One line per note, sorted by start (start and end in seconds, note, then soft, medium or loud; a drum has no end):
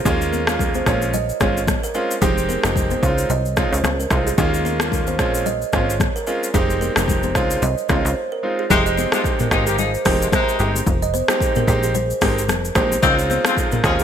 0.05 0.82 D#2 loud
0.05 0.44 G#3 medium
0.05 0.44 A#3 medium
0.05 0.44 C#4 medium
0.05 0.44 F4 loud
0.05 0.16 G#4 loud
0.05 kick loud
0.05 low conga medium
0.05 shaker medium
0.21 shaker medium
0.33 0.43 A#4 medium
0.33 high conga medium
0.33 shaker medium
0.47 0.84 G#3 medium
0.47 0.84 A#3 medium
0.47 0.84 C#4 medium
0.47 0.84 F4 medium
0.47 cross-stick loud
0.47 high conga medium
0.47 shaker medium
0.59 kick medium
0.59 low conga medium
0.59 shaker medium
0.74 0.87 C5 medium
0.74 high conga medium
0.74 shaker soft
0.86 1.32 A#1 loud
0.86 1.12 G#3 medium
0.86 1.12 C4 medium
0.86 1.12 C#4 medium
0.86 1.12 F4 medium
0.86 0.97 C#5 medium
0.86 kick medium
0.86 cross-stick medium
0.86 shaker medium
1.02 shaker medium
1.14 1.24 D#5 medium
1.14 low conga medium
1.14 shaker medium
1.29 shaker soft
1.40 1.77 G#1 loud
1.40 1.59 G#3 medium
1.40 1.59 C4 medium
1.40 1.59 C#4 medium
1.40 1.60 F4 medium
1.40 1.51 C#5 medium
1.40 kick medium
1.40 cross-stick medium
1.40 high conga medium
1.40 shaker medium
1.57 shaker medium
1.67 kick medium
1.67 cross-stick medium
1.67 high conga medium
1.67 low conga medium
1.67 shaker medium
1.83 1.91 A#4 medium
1.83 shaker medium
1.94 2.13 G#3 medium
1.94 2.13 C4 medium
1.94 2.14 C#4 medium
1.94 2.14 F4 medium
1.94 2.05 A#4 medium
1.94 shaker soft
2.11 shaker loud
2.21 2.58 F1 loud
2.21 2.60 G#3 medium
2.21 2.61 C4 medium
2.21 2.61 D#4 medium
2.21 2.61 G4 loud
2.21 2.32 G#4 loud
2.21 kick loud
2.21 low conga medium
2.21 shaker medium
2.38 shaker medium
2.49 2.59 A#4 medium
2.49 high conga medium
2.49 shaker medium
2.63 2.97 F1 loud
2.63 3.00 G#3 medium
2.63 3.00 C4 medium
2.63 3.00 D#4 medium
2.63 3.00 G4 medium
2.63 cross-stick loud
2.63 high conga medium
2.63 shaker medium
2.76 kick medium
2.76 low conga medium
2.76 shaker medium
2.91 3.03 C5 medium
2.91 high conga medium
2.91 shaker soft
3.02 3.26 C#2 loud
3.02 3.28 G#3 medium
3.02 3.28 C4 medium
3.02 3.28 D#4 medium
3.02 3.28 F4 medium
3.02 3.13 C#5 medium
3.02 kick medium
3.02 shaker medium
3.18 shaker medium
3.30 3.66 C2 medium
3.30 3.40 D#5 medium
3.30 low conga medium
3.30 shaker medium
3.46 shaker soft
3.57 3.76 G#3 medium
3.57 3.76 C4 medium
3.57 3.76 D#4 medium
3.57 3.76 F4 medium
3.57 3.67 C#5 medium
3.57 kick medium
3.57 cross-stick medium
3.57 high conga medium
3.57 shaker medium
3.72 3.82 C#2 medium
3.72 3.80 C5 medium
3.72 shaker medium
3.84 4.07 C#2 loud
3.84 cross-stick medium
3.84 high conga medium
3.84 low conga medium
3.84 shaker medium
4.00 4.07 A#4 medium
4.00 shaker medium
4.10 4.34 C2 medium
4.10 4.30 G#3 medium
4.10 4.30 C4 medium
4.10 4.30 D#4 medium
4.10 4.30 F4 medium
4.10 kick medium
4.10 cross-stick medium
4.10 shaker soft
4.27 4.34 G#4 medium
4.27 shaker loud
4.38 5.20 D#2 loud
4.38 4.77 G#3 medium
4.38 4.77 A#3 medium
4.38 4.77 C#4 medium
4.38 4.77 F4 loud
4.38 4.48 G#4 loud
4.38 kick loud
4.38 low conga medium
4.38 shaker medium
4.54 shaker medium
4.65 4.75 A#4 medium
4.65 high conga medium
4.65 shaker medium
4.80 5.16 G#3 medium
4.80 5.16 A#3 medium
4.80 5.16 C#4 medium
4.80 5.16 F4 medium
4.80 cross-stick loud
4.80 high conga medium
4.80 shaker medium
4.92 kick medium
4.92 low conga medium
4.92 shaker medium
5.07 5.15 C5 medium
5.07 high conga medium
5.07 shaker medium
5.19 5.65 A#1 medium
5.19 5.44 G#3 medium
5.19 5.44 C4 medium
5.19 5.44 C#4 medium
5.19 5.44 F4 medium
5.19 5.29 C#5 medium
5.19 kick medium
5.19 cross-stick medium
5.19 shaker medium
5.34 shaker medium
5.46 5.56 D#5 medium
5.46 low conga medium
5.46 shaker medium
5.62 shaker soft
5.73 6.09 G#1 loud
5.73 5.92 G#3 medium
5.73 5.92 C4 medium
5.73 5.92 C#4 medium
5.73 5.92 F4 medium
5.73 5.83 C#5 medium
5.73 kick loud
5.73 cross-stick medium
5.73 high conga medium
5.73 shaker medium
5.90 shaker medium
6.00 kick loud
6.00 cross-stick medium
6.00 high conga medium
6.00 low conga medium
6.00 shaker medium
6.16 6.23 A#4 medium
6.16 shaker medium
6.27 6.46 G#3 medium
6.27 6.46 C4 medium
6.27 6.46 C#4 medium
6.27 6.46 F4 medium
6.27 6.37 A#4 medium
6.27 shaker medium
6.43 shaker medium
6.54 6.90 F1 loud
6.54 6.93 G#3 medium
6.54 6.93 C4 medium
6.54 6.93 D#4 medium
6.54 6.93 G4 medium
6.54 6.64 G#4 loud
6.54 kick loud
6.54 low conga medium
6.54 shaker medium
6.70 shaker medium
6.81 6.91 A#4 medium
6.81 high conga medium
6.81 shaker medium
6.96 7.37 F1 medium
6.96 7.32 G#3 medium
6.96 7.32 C4 medium
6.96 7.32 D#4 medium
6.96 7.33 G4 medium
6.96 cross-stick loud
6.96 high conga medium
6.96 shaker medium
7.08 kick medium
7.08 low conga medium
7.08 shaker medium
7.23 7.35 C5 medium
7.23 high conga medium
7.23 shaker soft
7.35 7.58 C#2 medium
7.35 7.60 G#3 medium
7.35 7.60 C4 medium
7.35 7.60 D#4 medium
7.35 7.60 F4 medium
7.35 7.45 C#5 medium
7.35 kick medium
7.35 cross-stick medium
7.35 shaker medium
7.51 shaker medium
7.62 7.75 C2 medium
7.62 7.72 D#5 medium
7.62 low conga medium
7.62 shaker medium
7.78 shaker soft
7.89 8.03 C#2 medium
7.89 8.08 G#3 medium
7.89 8.08 C4 medium
7.89 8.08 D#4 medium
7.89 8.08 F4 medium
7.89 7.99 C#5 medium
7.89 kick medium
7.89 cross-stick medium
7.89 high conga medium
7.89 shaker medium
8.05 8.14 C#2 medium
8.05 8.12 C5 medium
8.05 shaker medium
8.32 8.39 A#4 medium
8.43 8.62 G#3 medium
8.43 8.62 C4 medium
8.43 8.62 D#4 medium
8.43 8.62 F4 medium
8.59 8.66 G#4 medium
8.70 9.06 F1 loud
8.70 8.83 C3 loud
8.70 9.09 G#3 medium
8.70 8.83 G#3 loud
8.70 9.09 C4 medium
8.70 8.83 D#4 loud
8.70 9.09 D#4 medium
8.70 9.09 G4 loud
8.70 kick loud
8.70 low conga medium
8.70 shaker medium
8.86 8.93 D#5 medium
8.86 shaker medium
8.98 9.08 C5 medium
8.98 high conga medium
8.98 shaker medium
9.12 9.22 C3 medium
9.12 9.48 G#3 medium
9.12 9.22 G#3 medium
9.12 9.49 C4 medium
9.12 9.49 D#4 medium
9.12 9.22 F4 medium
9.12 9.49 G4 medium
9.12 cross-stick loud
9.12 high conga medium
9.12 shaker medium
9.24 kick loud
9.24 shaker medium
9.39 9.47 A#4 medium
9.39 mid tom medium
9.39 high conga medium
9.39 shaker medium
9.51 9.97 G#1 medium
9.51 9.64 F3 medium
9.51 9.76 G#3 medium
9.51 9.77 C4 medium
9.51 9.64 D#4 medium
9.51 9.77 D#4 medium
9.51 9.77 G4 medium
9.51 9.64 G#4 medium
9.51 kick medium
9.51 cross-stick loud
9.51 shaker medium
9.67 9.76 A#3 medium
9.67 9.76 G4 medium
9.67 9.75 G#4 medium
9.67 9.76 A#4 medium
9.67 shaker medium
9.78 9.91 F3 medium
9.78 9.91 D#4 medium
9.78 9.91 G#4 medium
9.78 9.89 C5 medium
9.78 low conga medium
9.78 shaker medium
9.94 shaker soft
10.05 10.28 F1 loud
10.05 10.24 G#3 medium
10.05 10.24 C4 medium
10.05 10.24 D#4 medium
10.05 10.24 G4 medium
10.05 10.16 A#4 medium
10.05 kick loud
10.05 cross-stick medium
10.05 open hi-hat medium
10.05 high conga medium
10.05 shaker medium
10.21 10.30 C3 medium
10.21 10.30 G#3 medium
10.21 10.30 F4 medium
10.21 shaker medium
10.32 10.73 C3 medium
10.32 10.73 G#3 medium
10.32 10.73 D#4 loud
10.32 10.50 C5 medium
10.32 kick loud
10.32 cross-stick medium
10.32 high conga medium
10.32 low conga medium
10.32 shaker medium
10.49 shaker medium
10.59 10.82 G1 medium
10.59 10.78 G#3 medium
10.59 10.78 C4 medium
10.59 10.78 D#4 medium
10.59 10.79 G4 medium
10.59 shaker medium
10.76 high conga medium
10.76 shaker loud
10.87 11.23 F1 loud
10.87 kick loud
10.87 low conga medium
10.87 shaker medium
11.02 11.10 D#5 medium
11.02 shaker medium
11.14 11.24 C5 medium
11.14 high conga medium
11.14 shaker medium
11.28 11.65 G#3 medium
11.28 11.65 C4 medium
11.28 11.65 D#4 medium
11.28 11.65 G4 medium
11.28 cross-stick loud
11.28 high conga medium
11.28 shaker medium
11.40 kick medium
11.40 shaker medium
11.56 11.64 A#4 medium
11.56 mid tom medium
11.56 high conga medium
11.56 shaker medium
11.67 12.13 A#1 loud
11.67 11.93 G#3 medium
11.67 11.93 C4 medium
11.67 11.93 D#4 medium
11.67 11.93 G4 medium
11.67 kick medium
11.67 shaker medium
11.83 11.91 G#4 medium
11.83 shaker medium
11.95 12.05 C5 medium
11.95 low conga medium
11.95 shaker medium
12.10 shaker soft
12.21 12.50 G#1 medium
12.21 12.40 G#3 medium
12.21 12.41 C4 medium
12.21 12.41 D#4 medium
12.21 12.41 G4 medium
12.21 12.32 A#4 medium
12.21 kick medium
12.21 cross-stick loud
12.21 open hi-hat medium
12.21 high conga medium
12.21 shaker medium
12.38 shaker medium
12.49 12.71 F1 loud
12.49 cross-stick medium
12.49 high conga medium
12.49 low conga medium
12.49 shaker medium
12.65 shaker medium
12.75 12.98 A#1 medium
12.75 12.94 G#3 medium
12.75 12.95 C4 medium
12.75 12.95 D#4 medium
12.75 12.95 G4 medium
12.75 12.86 C5 medium
12.75 kick loud
12.75 cross-stick loud
12.75 shaker medium
12.92 high conga medium
12.92 shaker loud
13.02 13.39 C#2 loud
13.02 13.15 D#3 loud
13.02 13.41 G#3 medium
13.02 13.42 C4 medium
13.02 13.15 C4 loud
13.02 13.15 D#4 loud
13.02 13.42 D#4 medium
13.02 13.42 F4 loud
13.02 kick loud
13.02 low conga medium
13.02 shaker medium
13.19 13.26 C#5 medium
13.19 shaker medium
13.30 13.40 C5 medium
13.30 high conga medium
13.30 shaker medium
13.45 13.54 C#3 medium
13.45 13.81 G#3 medium
13.45 13.81 C4 medium
13.45 13.54 C4 medium
13.45 13.81 D#4 medium
13.45 13.54 F4 loud
13.45 13.81 F4 medium
13.45 cross-stick loud
13.45 high conga medium
13.45 shaker medium
13.57 kick medium
13.57 shaker medium
13.72 13.80 A#4 medium
13.72 mid tom loud
13.72 high conga medium
13.72 shaker medium
13.83 14.04 D#2 loud
13.83 13.96 F3 medium
13.83 14.04 G#3 medium
13.83 14.04 C4 medium
13.83 13.96 C#4 medium
13.83 14.04 D#4 medium
13.83 14.04 F4 medium
13.83 13.96 G#4 loud
13.83 kick medium
13.83 cross-stick loud
13.83 shaker medium
13.99 14.04 A#3 medium
13.99 14.04 G4 medium
13.99 14.04 G#4 medium
13.99 14.04 A#4 medium
13.99 shaker medium